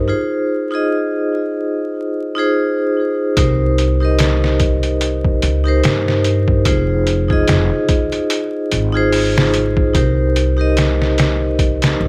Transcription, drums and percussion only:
3.37 kick loud
3.37 closed hi-hat medium
3.78 closed hi-hat medium
4.19 snare loud
4.19 closed hi-hat medium
4.44 snare soft
4.60 kick medium
4.60 closed hi-hat medium
4.83 closed hi-hat soft
5.01 closed hi-hat medium
5.24 kick medium
5.42 closed hi-hat medium
5.84 snare loud
5.84 closed hi-hat medium
6.08 snare soft
6.25 closed hi-hat medium
6.48 kick medium
6.65 kick loud
6.65 closed hi-hat medium
7.07 closed hi-hat medium
7.30 kick medium
7.48 snare loud
7.48 closed hi-hat medium
7.89 kick loud
7.89 closed hi-hat medium
8.12 closed hi-hat soft
8.30 closed hi-hat medium
8.71 closed hi-hat medium
9.12 open hi-hat medium
9.38 snare loud
9.54 closed hi-hat medium
9.77 kick loud
9.95 kick loud
9.95 closed hi-hat medium
10.36 closed hi-hat medium
10.77 snare loud
10.77 closed hi-hat medium
11.02 snare soft
11.18 snare loud
11.18 closed hi-hat medium
11.59 kick medium
11.59 closed hi-hat medium
11.82 snare loud
11.82 closed hi-hat medium

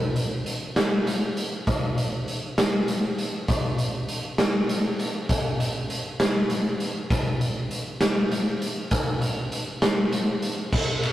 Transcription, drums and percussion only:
0.16 closed hi-hat medium
0.46 closed hi-hat medium
0.76 snare medium
0.76 closed hi-hat medium
1.07 closed hi-hat medium
1.37 closed hi-hat medium
1.67 kick loud
1.67 closed hi-hat medium
1.98 closed hi-hat medium
2.28 closed hi-hat medium
2.58 snare loud
2.58 closed hi-hat medium
2.88 closed hi-hat medium
3.18 closed hi-hat medium
3.48 kick loud
3.48 closed hi-hat medium
3.78 closed hi-hat medium
4.08 closed hi-hat medium
4.38 snare loud
4.38 closed hi-hat medium
4.69 closed hi-hat medium
4.99 closed hi-hat medium
5.29 kick loud
5.29 closed hi-hat medium
5.60 closed hi-hat medium
5.90 closed hi-hat medium
6.20 snare loud
6.20 closed hi-hat medium
6.50 closed hi-hat medium
6.80 closed hi-hat medium
7.10 kick loud
7.10 closed hi-hat medium
7.41 closed hi-hat medium
7.71 closed hi-hat medium
8.01 snare medium
8.01 closed hi-hat medium
8.31 closed hi-hat medium
8.62 closed hi-hat medium
8.91 kick loud
8.91 closed hi-hat loud
9.21 closed hi-hat medium
9.52 closed hi-hat medium
9.82 snare loud
9.82 closed hi-hat medium
10.12 closed hi-hat medium
10.42 closed hi-hat medium
10.73 kick loud
10.73 crash loud
11.03 ride medium

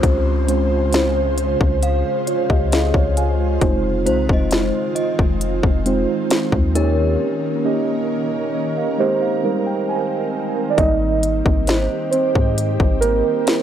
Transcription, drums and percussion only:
0.03 kick loud
0.03 closed hi-hat medium
0.49 closed hi-hat medium
0.93 snare loud
0.93 closed hi-hat medium
1.38 closed hi-hat medium
1.61 kick loud
1.83 closed hi-hat medium
2.27 closed hi-hat medium
2.50 kick medium
2.72 snare loud
2.72 closed hi-hat medium
2.94 kick medium
3.17 closed hi-hat medium
3.61 kick loud
3.61 closed hi-hat medium
4.07 closed hi-hat medium
4.29 kick loud
4.51 snare loud
4.51 closed hi-hat medium
4.96 closed hi-hat medium
5.19 kick loud
5.41 closed hi-hat medium
5.63 kick loud
5.86 closed hi-hat medium
6.31 snare loud
6.31 closed hi-hat medium
6.52 kick medium
6.75 closed hi-hat medium
10.78 kick loud
10.78 closed hi-hat medium
11.23 closed hi-hat medium
11.46 kick loud
11.67 snare loud
11.67 closed hi-hat medium
12.13 closed hi-hat medium
12.35 kick medium
12.58 closed hi-hat medium
12.80 kick loud
13.02 closed hi-hat medium
13.47 snare loud
13.47 closed hi-hat medium

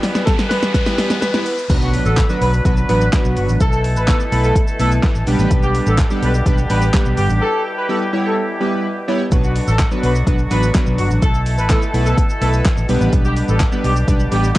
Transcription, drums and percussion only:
0.03 snare loud
0.03 open hi-hat medium
0.03 shaker medium
0.15 snare loud
0.15 shaker medium
0.27 kick loud
0.27 snare loud
0.27 closed hi-hat medium
0.27 shaker medium
0.39 snare loud
0.39 shaker medium
0.51 snare loud
0.51 open hi-hat medium
0.51 shaker medium
0.63 snare loud
0.63 shaker medium
0.75 kick loud
0.75 snare loud
0.75 closed hi-hat medium
0.75 shaker medium
0.87 snare loud
0.87 shaker medium
0.98 snare loud
0.98 open hi-hat medium
0.98 shaker medium
1.10 snare loud
1.10 shaker medium
1.22 snare loud
1.22 closed hi-hat medium
1.22 shaker medium
1.34 snare loud
1.34 shaker medium
1.46 open hi-hat medium
1.46 shaker medium
1.58 shaker medium
1.70 kick loud
1.70 closed hi-hat medium
1.70 crash loud
1.70 shaker medium
1.82 shaker soft
1.94 open hi-hat medium
1.94 shaker medium
2.06 shaker medium
2.17 kick loud
2.17 snare medium
2.17 clap loud
2.17 closed hi-hat medium
2.17 shaker medium
2.30 shaker medium
2.42 open hi-hat medium
2.42 shaker medium
2.53 shaker medium
2.65 kick loud
2.65 closed hi-hat medium
2.65 shaker medium
2.77 shaker medium
2.89 open hi-hat medium
2.89 shaker medium
3.01 shaker medium
3.13 kick loud
3.13 snare loud
3.13 clap loud
3.13 closed hi-hat medium
3.13 shaker medium
3.25 shaker medium
3.37 open hi-hat medium
3.37 shaker medium
3.49 shaker medium
3.60 kick loud
3.60 closed hi-hat medium
3.60 shaker medium
3.72 shaker medium
3.84 open hi-hat medium
3.84 shaker medium
3.96 shaker medium
4.08 kick loud
4.08 snare medium
4.08 clap loud
4.08 closed hi-hat medium
4.08 shaker medium
4.20 shaker medium
4.32 open hi-hat medium
4.32 shaker medium
4.44 shaker medium
4.56 kick loud
4.56 closed hi-hat medium
4.56 shaker medium
4.68 shaker medium
4.80 open hi-hat medium
4.80 shaker medium
4.92 shaker medium
5.03 kick loud
5.03 snare loud
5.03 clap loud
5.03 closed hi-hat medium
5.03 shaker medium
5.15 shaker medium
5.27 open hi-hat medium
5.27 shaker medium
5.39 shaker medium
5.51 kick loud
5.51 closed hi-hat medium
5.51 shaker medium
5.63 shaker medium
5.75 open hi-hat medium
5.75 shaker soft
5.87 shaker medium
5.98 kick loud
5.98 snare medium
5.98 clap loud
5.98 closed hi-hat medium
5.98 shaker medium
6.10 shaker medium
6.23 open hi-hat medium
6.23 shaker medium
6.34 shaker medium
6.46 kick loud
6.46 closed hi-hat medium
6.46 shaker medium
6.58 shaker medium
6.70 open hi-hat medium
6.70 shaker medium
6.82 shaker medium
6.94 kick loud
6.94 snare loud
6.94 clap loud
6.94 closed hi-hat medium
6.94 shaker medium
7.06 shaker medium
7.17 open hi-hat medium
7.17 shaker medium
7.30 shaker medium
9.32 kick loud
9.32 closed hi-hat medium
9.32 shaker medium
9.44 shaker medium
9.56 open hi-hat medium
9.56 shaker soft
9.68 shaker medium
9.79 kick loud
9.79 snare medium
9.79 clap loud
9.79 closed hi-hat medium
9.79 shaker medium
9.91 shaker medium
10.04 open hi-hat medium
10.04 shaker medium
10.15 shaker medium
10.27 kick loud
10.27 closed hi-hat medium
10.27 shaker medium
10.39 shaker medium
10.51 open hi-hat medium
10.51 shaker medium
10.63 shaker medium
10.75 kick loud
10.75 snare loud
10.75 clap loud
10.75 closed hi-hat medium
10.75 shaker medium
10.87 shaker medium
10.98 open hi-hat medium
10.98 shaker medium
11.11 shaker medium
11.22 kick loud
11.22 closed hi-hat medium
11.22 shaker medium
11.34 shaker medium
11.46 open hi-hat medium
11.46 shaker medium
11.58 shaker medium
11.69 kick loud
11.69 snare medium
11.69 clap loud
11.69 closed hi-hat medium
11.69 shaker medium
11.82 shaker medium
11.94 open hi-hat medium
11.94 shaker medium
12.06 shaker medium
12.17 kick loud
12.17 closed hi-hat medium
12.17 shaker medium
12.29 shaker medium
12.41 open hi-hat medium
12.41 shaker medium
12.53 shaker medium
12.65 kick loud
12.65 snare medium
12.65 clap loud
12.65 closed hi-hat medium
12.65 shaker medium
12.77 shaker medium
12.89 open hi-hat medium
12.89 shaker medium
13.01 shaker medium
13.13 kick loud
13.13 closed hi-hat medium
13.13 shaker medium
13.25 shaker medium
13.36 open hi-hat medium
13.36 shaker medium
13.48 shaker medium
13.60 kick loud
13.60 snare medium
13.60 clap loud
13.60 closed hi-hat medium
13.60 shaker medium
13.72 shaker medium
13.84 open hi-hat medium
13.84 shaker medium
13.96 shaker medium
14.08 kick loud
14.08 closed hi-hat medium
14.08 shaker medium
14.20 shaker medium
14.32 open hi-hat medium
14.32 shaker medium
14.44 shaker medium

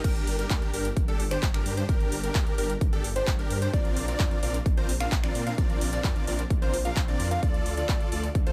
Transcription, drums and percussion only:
0.04 kick loud
0.04 closed hi-hat medium
0.04 crash loud
0.16 closed hi-hat soft
0.27 open hi-hat loud
0.39 closed hi-hat medium
0.50 kick loud
0.50 clap loud
0.50 closed hi-hat medium
0.62 closed hi-hat soft
0.74 open hi-hat loud
0.85 closed hi-hat medium
0.97 kick loud
0.97 closed hi-hat medium
1.08 closed hi-hat soft
1.20 open hi-hat loud
1.31 finger snap medium
1.31 closed hi-hat medium
1.43 kick loud
1.43 clap loud
1.43 closed hi-hat medium
1.54 finger snap medium
1.54 closed hi-hat soft
1.66 open hi-hat loud
1.77 closed hi-hat medium
1.89 kick loud
1.89 closed hi-hat medium
2.00 closed hi-hat soft
2.12 open hi-hat loud
2.24 closed hi-hat medium
2.35 kick loud
2.35 clap loud
2.35 closed hi-hat medium
2.47 closed hi-hat soft
2.58 open hi-hat loud
2.70 closed hi-hat medium
2.81 kick loud
2.81 closed hi-hat medium
2.93 closed hi-hat soft
3.04 open hi-hat loud
3.16 closed hi-hat medium
3.27 kick loud
3.27 clap loud
3.27 closed hi-hat medium
3.39 closed hi-hat soft
3.50 open hi-hat loud
3.62 closed hi-hat medium
3.74 kick loud
3.74 closed hi-hat medium
3.85 closed hi-hat soft
3.97 open hi-hat loud
4.08 closed hi-hat medium
4.20 kick loud
4.20 clap loud
4.20 closed hi-hat medium
4.31 closed hi-hat soft
4.43 open hi-hat loud
4.54 closed hi-hat medium
4.66 kick loud
4.66 closed hi-hat medium
4.77 closed hi-hat soft
4.89 open hi-hat loud
5.01 finger snap medium
5.01 closed hi-hat medium
5.12 kick loud
5.12 clap loud
5.12 closed hi-hat medium
5.24 finger snap medium
5.24 closed hi-hat soft
5.35 open hi-hat loud
5.47 closed hi-hat medium
5.58 kick loud
5.58 closed hi-hat medium
5.70 closed hi-hat soft
5.81 open hi-hat loud
5.93 closed hi-hat medium
6.04 kick loud
6.04 clap loud
6.04 closed hi-hat medium
6.16 closed hi-hat soft
6.27 open hi-hat loud
6.39 closed hi-hat medium
6.50 kick loud
6.50 closed hi-hat soft
6.62 closed hi-hat soft
6.74 open hi-hat loud
6.85 closed hi-hat medium
6.96 kick loud
6.96 clap loud
6.96 closed hi-hat medium
7.08 closed hi-hat soft
7.20 open hi-hat loud
7.31 closed hi-hat medium
7.43 kick loud
7.43 closed hi-hat medium
7.54 closed hi-hat soft
7.66 open hi-hat loud
7.77 closed hi-hat medium
7.89 kick loud
7.89 clap loud
7.89 closed hi-hat soft
8.00 closed hi-hat soft
8.12 open hi-hat loud
8.24 closed hi-hat medium
8.35 kick loud
8.35 closed hi-hat medium
8.47 closed hi-hat soft

